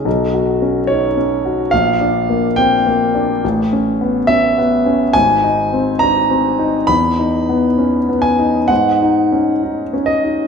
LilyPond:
\new Staff \with { instrumentName = "Grand piano" } { \time 4/4 \key gis \minor \tempo 4 = 70 << { r4 cis''4 eis''4 g''4 | r4 e''4 gis''4 ais''4 | b''4. gis''8 fis''4. dis''8 | } \\ { \tuplet 3/2 { b,,8 fis'8 cis'8 dis'8 cis'8 fis'8 ais,,8 d'8 ais8 bis8 ais8 d'8 } | \tuplet 3/2 { a,,8 cis'8 b8 cis'8 b8 cis'8 gis,,8 dis'8 bis8 d'8 bis8 dis'8 } | \tuplet 3/2 { e,8 dis'8 b8 cis'8 b8 dis'8 gis,8 dis'8 cis'8 dis'8 cis'8 dis'8 } | } >> }